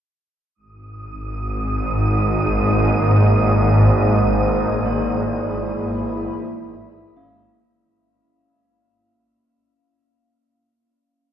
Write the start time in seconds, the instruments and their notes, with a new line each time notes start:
0.55 synth drone G#1 G#2, ambient pad G#3, synth texture D#6
1.64 ambient pad A#3
1.80 ambient pad A#4
2.13 ambient pad D#5
4.60 ambient pad E4
4.71 ambient pad B5
4.86 singing bowl A#3
5.79 ambient pad E5
7.17 singing bowl C#4